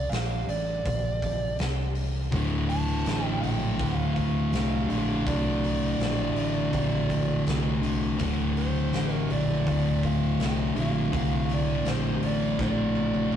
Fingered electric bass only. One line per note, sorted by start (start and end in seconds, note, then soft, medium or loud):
0.10 0.46 A#1 medium
0.47 0.83 A1 medium
0.85 1.56 A#1 medium
1.59 2.30 C2 medium
2.32 3.03 D1 medium
3.06 3.41 A1 medium
3.42 3.78 A#1 medium
3.79 4.50 D2 medium
4.52 4.88 C2 loud
4.89 5.25 A#1 medium
5.26 5.97 C2 medium
5.98 6.34 A#1 medium
6.34 6.71 A1 medium
6.74 7.44 A#1 medium
7.46 8.17 C2 medium
8.20 8.91 D1 medium
8.92 9.28 A1 medium
9.30 9.65 A#1 medium
9.66 10.37 D2 loud
10.38 10.74 C2 medium
10.75 11.11 A#1 medium
11.13 11.84 C2 medium
11.85 12.21 A#1 medium
12.21 12.58 A1 medium
12.59 13.30 A#1 medium
13.33 13.36 C2 medium